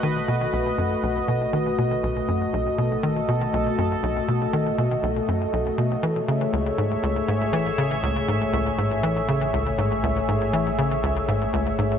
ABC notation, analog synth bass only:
X:1
M:4/4
L:1/8
Q:1/4=120
K:Bmix
V:1 name="Analog synth bass" clef=bass
D, B,, B,,, F,, B,,, B,, D, B,, | B,,, F,, B,,, B,, D, B,, B,,, F,, | B,,, B,, D, B,, B,,, F,, B,,, B,, | E, C, C,, G,, C,, G,, E, C, |
C,, G,, C,, G,, E, C, C,, G,, | C,, G,, E, C, C,, G,, C,, G,, |]